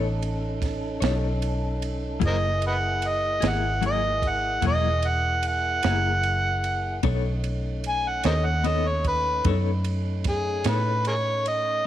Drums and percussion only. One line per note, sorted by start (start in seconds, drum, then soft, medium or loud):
0.22 ride medium
0.62 kick medium
0.62 snare soft
0.62 ride medium
1.02 snare loud
1.02 ride medium
1.42 ride medium
1.82 ride medium
2.22 kick loud
2.22 ride medium
2.62 ride medium
3.02 ride medium
3.42 snare loud
3.42 ride medium
3.83 ride medium
4.22 kick medium
4.22 ride medium
4.62 kick loud
4.62 ride medium
5.03 ride medium
5.43 ride medium
5.83 snare loud
5.83 ride medium
6.23 ride medium
6.64 ride medium
7.03 kick loud
7.03 ride medium
7.44 ride medium
7.84 ride medium
8.24 snare loud
8.24 ride medium
8.64 ride medium
9.05 kick medium
9.05 ride medium
9.45 kick loud
9.45 ride medium
9.84 ride medium
10.24 kick medium
10.24 snare soft
10.24 ride medium
10.64 snare loud
10.64 ride medium
11.05 ride medium
11.46 ride medium